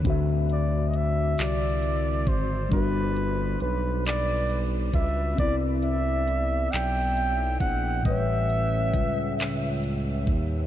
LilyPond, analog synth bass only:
\new Staff \with { instrumentName = "Analog synth bass" } { \clef bass \time 6/8 \key g \major \tempo 4. = 45 d,4. c,4 aes,,8 | g,,4 b,,4. cis,8 | c,4. b,,4 bes,,8 | a,,4 cis,4. ees,8 | }